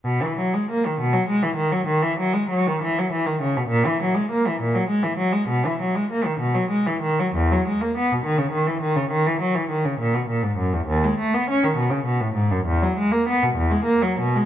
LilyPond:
\new Staff \with { instrumentName = "Cello" } { \clef bass \time 12/8 \key b \major \tempo 4. = 67 b,16 e16 fis16 gis16 ais16 dis16 b,16 fis16 gis16 e16 dis16 fis16 dis16 e16 fis16 gis16 fis16 dis16 e16 fis16 e16 dis16 cis16 b,16 | ais,16 e16 fis16 gis16 ais16 e16 ais,16 fis16 gis16 e16 fis16 gis16 b,16 e16 fis16 gis16 ais16 dis16 b,16 fis16 gis16 e16 dis16 fis16 | e,16 fis16 gis16 ais16 b16 b,16 dis16 cis16 dis16 e16 dis16 cis16 dis16 e16 fis16 e16 dis16 cis16 ais,16 b,16 ais,16 gis,16 fis,16 e,16 | dis,16 gis16 a16 b16 cis'16 dis16 b,16 cis16 b,16 a,16 gis,16 fis,16 e,16 fis16 gis16 ais16 b16 b,16 e,16 gis16 ais16 fis16 b,16 gis16 | }